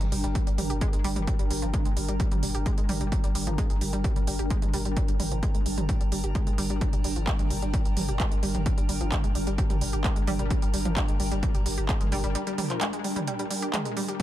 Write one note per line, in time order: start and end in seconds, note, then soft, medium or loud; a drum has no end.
0.00 0.12 G1 medium
0.00 0.07 G#3 medium
0.00 14.22 D4 medium
0.00 14.22 A#4 medium
0.00 14.22 G5 medium
0.00 14.22 A#5 medium
0.00 closed hi-hat medium
0.00 mid tom medium
0.12 0.23 G1 loud
0.12 0.22 G3 medium
0.12 open hi-hat medium
0.24 0.35 G1 medium
0.24 0.30 G3 medium
0.24 closed hi-hat medium
0.35 0.42 G3 medium
0.35 kick loud
0.35 closed hi-hat medium
0.47 0.58 G1 medium
0.47 0.53 G3 medium
0.47 closed hi-hat medium
0.58 0.69 G1 loud
0.58 0.68 G3 medium
0.58 mid tom medium
0.58 open hi-hat loud
0.70 0.81 G1 medium
0.70 0.76 G4 medium
0.70 closed hi-hat medium
0.81 0.88 G#3 loud
0.81 kick loud
0.81 closed hi-hat medium
0.93 1.04 G1 medium
0.93 0.99 G#3 medium
0.93 closed hi-hat medium
1.04 1.16 G1 loud
1.04 1.14 G3 loud
1.04 open hi-hat medium
1.16 1.27 G1 medium
1.16 1.20 G3 medium
1.16 closed hi-hat medium
1.16 mid tom medium
1.27 1.34 G3 medium
1.27 kick loud
1.27 closed hi-hat loud
1.39 1.50 G1 medium
1.39 1.45 G3 medium
1.39 closed hi-hat medium
1.50 1.62 G1 loud
1.50 1.57 G3 medium
1.50 open hi-hat loud
1.62 1.73 G1 medium
1.62 1.69 F3 medium
1.62 closed hi-hat medium
1.74 1.80 G#3 medium
1.74 kick loud
1.74 closed hi-hat loud
1.74 mid tom medium
1.85 1.96 G1 medium
1.85 1.92 G#3 medium
1.85 closed hi-hat medium
1.97 2.08 G1 loud
1.97 2.06 G3 medium
1.97 open hi-hat loud
2.08 2.20 G1 medium
2.08 2.15 G3 medium
2.08 closed hi-hat medium
2.20 2.26 G3 medium
2.20 kick loud
2.20 closed hi-hat loud
2.32 2.42 G1 medium
2.32 2.38 G3 medium
2.32 closed hi-hat medium
2.32 mid tom medium
2.43 2.54 G1 loud
2.43 2.53 G3 medium
2.43 open hi-hat loud
2.55 2.66 G1 medium
2.55 2.61 G4 medium
2.55 closed hi-hat medium
2.66 2.72 G#3 loud
2.66 kick loud
2.66 closed hi-hat loud
2.78 2.88 G1 medium
2.78 2.84 G#3 medium
2.78 closed hi-hat medium
2.89 3.00 G1 loud
2.89 2.99 G3 loud
2.89 mid tom medium
2.89 open hi-hat loud
3.01 3.12 G1 medium
3.01 3.04 G3 medium
3.01 closed hi-hat medium
3.12 3.19 G3 medium
3.12 kick loud
3.12 closed hi-hat loud
3.24 3.34 G1 medium
3.24 3.30 G3 medium
3.24 closed hi-hat medium
3.35 3.46 G1 loud
3.35 3.42 G3 medium
3.35 open hi-hat loud
3.47 3.58 G1 medium
3.47 3.53 F3 medium
3.47 closed hi-hat medium
3.47 mid tom medium
3.58 3.65 G#3 loud
3.58 kick loud
3.58 closed hi-hat loud
3.70 3.81 G1 medium
3.70 3.76 G#3 medium
3.70 closed hi-hat soft
3.81 3.93 G1 loud
3.81 3.91 G3 medium
3.81 open hi-hat loud
3.93 4.04 G1 medium
3.93 3.99 G3 medium
3.93 closed hi-hat medium
4.04 4.11 G3 medium
4.04 kick loud
4.04 closed hi-hat medium
4.04 mid tom medium
4.16 4.27 G1 medium
4.16 4.22 G3 medium
4.16 closed hi-hat medium
4.27 4.39 G1 loud
4.27 4.37 G3 medium
4.27 open hi-hat loud
4.39 4.50 G1 medium
4.39 4.45 G4 medium
4.39 closed hi-hat medium
4.50 4.57 G#3 loud
4.50 kick loud
4.50 closed hi-hat loud
4.62 4.73 G1 medium
4.62 4.69 G#3 medium
4.62 closed hi-hat medium
4.62 mid tom medium
4.74 4.85 G1 medium
4.74 4.83 G3 loud
4.74 open hi-hat loud
4.85 4.96 G1 medium
4.85 4.89 G3 medium
4.85 closed hi-hat medium
4.97 5.03 G3 medium
4.97 kick loud
4.97 closed hi-hat medium
5.08 5.19 G1 medium
5.08 5.15 G3 medium
5.08 closed hi-hat medium
5.20 5.31 G1 loud
5.20 5.26 G3 medium
5.20 mid tom medium
5.20 open hi-hat loud
5.31 5.43 G1 medium
5.31 5.38 F3 medium
5.31 closed hi-hat medium
5.43 5.49 G#3 loud
5.43 kick loud
5.43 closed hi-hat medium
5.55 5.65 G1 medium
5.55 5.61 G#3 medium
5.55 closed hi-hat medium
5.66 5.77 G1 loud
5.66 5.76 G3 medium
5.66 open hi-hat loud
5.78 5.89 G1 medium
5.78 5.84 G3 medium
5.78 closed hi-hat medium
5.78 mid tom medium
5.89 5.95 G3 medium
5.89 kick loud
5.89 closed hi-hat medium
6.01 6.11 G1 medium
6.01 6.07 G3 medium
6.01 closed hi-hat medium
6.12 6.23 G1 loud
6.12 6.22 G3 medium
6.12 open hi-hat loud
6.24 6.35 G1 medium
6.24 6.30 G4 medium
6.24 closed hi-hat medium
6.35 6.42 G#3 loud
6.35 kick loud
6.35 closed hi-hat medium
6.35 mid tom medium
6.47 6.58 G1 medium
6.47 6.53 G#3 medium
6.47 closed hi-hat medium
6.58 6.69 G1 medium
6.58 6.68 G3 loud
6.58 open hi-hat loud
6.70 6.81 G1 medium
6.70 6.74 G3 medium
6.70 closed hi-hat soft
6.81 6.88 G3 medium
6.81 kick loud
6.81 closed hi-hat medium
6.81 mid tom medium
6.93 7.04 G1 medium
6.93 6.99 G3 medium
6.93 closed hi-hat medium
7.04 7.16 G1 medium
7.04 7.11 G3 medium
7.04 open hi-hat loud
7.16 7.27 G1 medium
7.16 7.22 F3 medium
7.16 closed hi-hat soft
7.27 7.34 G#3 loud
7.27 kick loud
7.27 clap loud
7.27 closed hi-hat medium
7.39 7.50 G1 medium
7.39 7.45 G#3 medium
7.39 closed hi-hat medium
7.39 mid tom medium
7.50 7.62 G1 loud
7.50 7.60 G3 medium
7.50 open hi-hat loud
7.62 7.73 G1 medium
7.62 7.69 G3 medium
7.62 closed hi-hat medium
7.74 7.80 G3 medium
7.74 kick loud
7.74 closed hi-hat medium
7.85 7.96 G1 medium
7.85 7.92 G3 medium
7.85 closed hi-hat soft
7.97 8.08 G1 loud
7.97 8.06 G3 medium
7.97 mid tom medium
7.97 open hi-hat loud
8.08 8.20 G1 medium
8.08 8.15 G4 medium
8.08 closed hi-hat medium
8.20 8.26 G#3 loud
8.20 kick loud
8.20 clap loud
8.20 closed hi-hat medium
8.32 8.42 G1 medium
8.32 8.38 G#3 medium
8.32 closed hi-hat soft
8.43 8.54 G1 loud
8.43 8.53 G3 loud
8.43 open hi-hat medium
8.55 8.66 G1 medium
8.55 8.58 G3 medium
8.55 closed hi-hat soft
8.55 mid tom medium
8.66 8.72 G3 medium
8.66 kick loud
8.66 closed hi-hat medium
8.78 8.88 G1 medium
8.78 8.84 G3 medium
8.78 closed hi-hat medium
8.89 9.00 G1 medium
8.89 8.95 G3 medium
8.89 open hi-hat loud
9.01 9.12 G1 medium
9.01 9.07 F3 medium
9.01 closed hi-hat soft
9.12 9.19 G#3 medium
9.12 kick loud
9.12 clap loud
9.12 closed hi-hat medium
9.12 mid tom medium
9.24 9.35 G1 medium
9.24 9.30 G#3 medium
9.24 closed hi-hat soft
9.35 9.46 G1 loud
9.35 9.45 G3 medium
9.35 open hi-hat medium
9.47 9.58 G1 medium
9.47 9.53 G3 medium
9.47 closed hi-hat medium
9.58 9.65 G3 medium
9.58 kick loud
9.58 closed hi-hat medium
9.70 9.81 G1 medium
9.70 9.76 G3 medium
9.70 closed hi-hat soft
9.70 mid tom medium
9.81 9.93 G1 loud
9.81 9.91 G3 medium
9.81 open hi-hat loud
9.93 10.04 G1 medium
9.93 9.99 G4 medium
9.93 closed hi-hat medium
10.04 10.11 G#3 loud
10.04 kick loud
10.04 clap loud
10.04 closed hi-hat medium
10.16 10.27 G1 medium
10.16 10.22 G#3 medium
10.16 closed hi-hat soft
10.27 10.39 G1 loud
10.27 10.37 G3 loud
10.27 mid tom medium
10.27 open hi-hat medium
10.39 10.50 G1 medium
10.39 10.43 G3 medium
10.39 closed hi-hat soft
10.50 10.57 G3 medium
10.50 kick loud
10.50 closed hi-hat medium
10.62 10.73 G1 medium
10.62 10.68 G3 medium
10.62 closed hi-hat medium
10.74 10.85 G1 loud
10.74 10.80 G3 medium
10.74 open hi-hat loud
10.85 10.96 G1 medium
10.85 10.92 F3 medium
10.85 closed hi-hat soft
10.85 mid tom medium
10.97 11.03 G#3 medium
10.97 kick loud
10.97 clap loud
10.97 closed hi-hat loud
11.08 11.19 G1 medium
11.08 11.15 G#3 medium
11.08 closed hi-hat medium
11.20 11.31 G1 loud
11.20 11.29 G3 medium
11.20 open hi-hat medium
11.31 11.43 G1 medium
11.31 11.38 G3 medium
11.31 closed hi-hat medium
11.43 11.49 G3 medium
11.43 kick loud
11.43 closed hi-hat medium
11.43 mid tom medium
11.54 11.65 G1 medium
11.54 11.61 G3 medium
11.54 closed hi-hat soft
11.66 11.77 G1 loud
11.66 11.76 G3 medium
11.66 open hi-hat loud
11.78 11.89 G1 medium
11.78 11.84 G4 medium
11.78 closed hi-hat medium
11.89 11.95 G#3 loud
11.89 kick loud
11.89 clap loud
11.89 closed hi-hat medium
12.01 12.12 G1 medium
12.01 12.07 G#3 medium
12.01 closed hi-hat medium
12.01 mid tom medium
12.12 12.23 G1 medium
12.12 12.22 G3 loud
12.12 open hi-hat medium
12.24 12.35 G1 medium
12.24 12.28 G3 medium
12.24 closed hi-hat medium
12.35 12.42 G3 medium
12.35 closed hi-hat medium
12.47 12.53 G3 medium
12.47 closed hi-hat medium
12.58 12.65 G3 medium
12.58 mid tom medium
12.58 open hi-hat loud
12.70 12.76 F3 medium
12.70 clap soft
12.70 closed hi-hat medium
12.81 12.88 G#3 loud
12.81 clap loud
12.81 closed hi-hat loud
12.93 12.99 G#3 medium
12.93 closed hi-hat soft
13.04 13.14 G3 medium
13.04 open hi-hat medium
13.16 13.22 G3 medium
13.16 closed hi-hat medium
13.16 mid tom medium
13.27 13.34 G3 medium
13.27 closed hi-hat medium
13.39 13.45 G3 medium
13.39 closed hi-hat medium
13.51 13.60 G3 medium
13.51 open hi-hat loud
13.62 13.69 G4 medium
13.62 closed hi-hat medium
13.74 13.80 G#3 loud
13.74 clap loud
13.74 closed hi-hat loud
13.74 mid tom medium
13.85 13.92 G#3 medium
13.85 closed hi-hat medium
13.97 14.06 G3 loud
13.97 open hi-hat medium
14.08 14.12 G3 medium
14.08 closed hi-hat medium